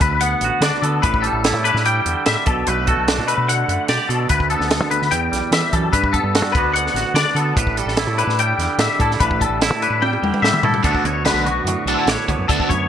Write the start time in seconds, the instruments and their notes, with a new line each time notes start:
Already playing: clean electric guitar D3
0.01 fingered electric bass D2, clean electric guitar D2 B4, kick, closed hi-hat
0.21 clean electric guitar B3 F#5, closed hi-hat
0.41 fingered electric bass A1, clean electric guitar F#4, closed hi-hat
0.61 fingered electric bass D3, clean electric guitar D5, snare, closed hi-hat
0.65 clean electric guitar D4
0.82 fingered electric bass D3, clean electric guitar B3 A4, closed hi-hat
1.02 fingered electric bass A1, clean electric guitar A2 B4, kick, closed hi-hat
1.14 kick
1.22 clean electric guitar G3 A4, closed hi-hat
1.33 fingered electric bass A1
1.44 clean electric guitar E4, snare, closed hi-hat
1.53 fingered electric bass A2
1.64 clean electric guitar D4 B4, closed hi-hat
1.74 fingered electric bass A2, snare
1.85 clean electric guitar G3 G5, closed hi-hat
2.06 fingered electric bass E2, clean electric guitar D3, closed hi-hat
2.26 fingered electric bass A2, clean electric guitar G3 E5, snare, closed hi-hat
2.46 fingered electric bass B1, clean electric guitar B2 A4, kick, closed hi-hat
2.67 fingered electric bass B1, clean electric guitar A3 B4, closed hi-hat
2.87 clean electric guitar F#4 A4, kick, closed hi-hat
2.97 fingered electric bass B1
3.08 clean electric guitar D4, snare, closed hi-hat
3.18 fingered electric bass B2
3.28 clean electric guitar A3 B4, closed hi-hat
3.38 fingered electric bass B2
3.48 clean electric guitar D3 F#5, closed hi-hat
3.68 fingered electric bass F#2, clean electric guitar A3, closed hi-hat
3.88 fingered electric bass B2, clean electric guitar G4 D5, snare, closed hi-hat
4.09 fingered electric bass B2, clean electric guitar B2 A4, closed hi-hat
4.29 clean electric guitar D2 B4, fingered electric bass D2, kick, closed hi-hat
4.40 kick
4.50 clean electric guitar B3 A4, closed hi-hat
4.60 fingered electric bass D2, snare
4.71 snare, closed hi-hat
4.81 fingered electric bass D3
4.91 clean electric guitar D2 B4, closed hi-hat
5.02 fingered electric bass D3, snare
5.11 clean electric guitar E2 G5, fingered electric bass E2, closed hi-hat
5.32 fingered electric bass B1, clean electric guitar G3, snare, closed hi-hat
5.51 clean electric guitar E2 E5, fingered electric bass E3, snare, closed hi-hat
5.72 clean electric guitar F#2 A4, fingered electric bass E3, kick, closed hi-hat
5.93 fingered electric bass G2, clean electric guitar G2 B4, kick, closed hi-hat
6.04 kick
6.13 clean electric guitar B3 A4, kick, closed hi-hat
6.24 fingered electric bass G2
6.35 clean electric guitar F#4, snare, closed hi-hat
6.42 fingered electric bass G3
6.52 fingered electric bass D2, clean electric guitar D2 B4, kick, closed hi-hat
6.57 clean electric guitar D3 B3 D4 F#4
6.73 clean electric guitar B3 F#5, closed hi-hat
6.86 snare
6.94 fingered electric bass A1, clean electric guitar F#4, snare, closed hi-hat
7.14 fingered electric bass D3, clean electric guitar D5, snare, closed hi-hat
7.18 clean electric guitar D4
7.35 fingered electric bass D3, clean electric guitar B3 A4, closed hi-hat
7.56 fingered electric bass A1, clean electric guitar A2 B4, kick, closed hi-hat
7.67 kick
7.77 clean electric guitar G3 A4, closed hi-hat
7.86 fingered electric bass A1, snare
7.97 clean electric guitar E4, snare, closed hi-hat
8.07 fingered electric bass A2
8.18 clean electric guitar D4 B4, closed hi-hat
8.27 fingered electric bass A2, snare
8.39 clean electric guitar G3 G5, closed hi-hat
8.58 fingered electric bass E2, clean electric guitar D3, snare, closed hi-hat
8.78 fingered electric bass A2, clean electric guitar G3 E5, snare, closed hi-hat
8.99 fingered electric bass A2, clean electric guitar E4 A4, kick, closed hi-hat
9.11 snare
9.20 fingered electric bass A1, clean electric guitar A2 B4, kick, closed hi-hat
9.31 kick
9.41 clean electric guitar G3 A4, kick, closed hi-hat
9.49 fingered electric bass A1
9.61 clean electric guitar E4, snare, closed hi-hat
9.71 fingered electric bass A2
9.82 clean electric guitar D4 B4, closed hi-hat
9.90 fingered electric bass A2
10.02 clean electric guitar G3 G5, high tom
10.13 high tom
10.22 fingered electric bass E2, clean electric guitar D3, mid tom
10.34 mid tom
10.42 fingered electric bass A2, clean electric guitar G3 E5, snare
10.53 mid tom
10.63 fingered electric bass A2, clean electric guitar E4 A4, floor tom
10.74 floor tom
10.83 clean electric guitar D2 D3 B3 D4 F#4 A4, fingered electric bass D2, overdriven electric guitar D3 A3 D4 F#4, kick, closed hi-hat
10.95 kick
11.04 fingered electric bass D2, clean electric guitar B3 C#5, muted overdriven electric guitar stroke, closed hi-hat
11.25 clean electric guitar D3 B4, overdriven electric guitar D3 A3 D4 F#4, snare, closed hi-hat
11.33 fingered electric bass B1
11.45 clean electric guitar B3 F#4, muted overdriven electric guitar stroke, closed hi-hat
11.64 fingered electric bass F#2, clean electric guitar A2, muted overdriven electric guitar stroke, closed hi-hat
11.85 fingered electric bass B1, overdriven electric guitar D3 A3 D4 F#4, clean electric guitar D4 A4, closed hi-hat
11.99 clean electric guitar E4
12.06 fingered electric bass A1, clean electric guitar C#5, muted overdriven electric guitar stroke, snare, closed hi-hat
12.11 clean electric guitar D4
12.28 fingered electric bass D2, clean electric guitar B3, muted overdriven electric guitar stroke, kick, closed hi-hat
12.39 fingered electric bass F#2
12.48 fingered electric bass D2, clean electric guitar D2 A4, overdriven electric guitar D3 A3 D4 F#4, kick, closed hi-hat
12.60 kick
12.69 fingered electric bass F#2, clean electric guitar B3 C#5, muted overdriven electric guitar stroke, kick, closed hi-hat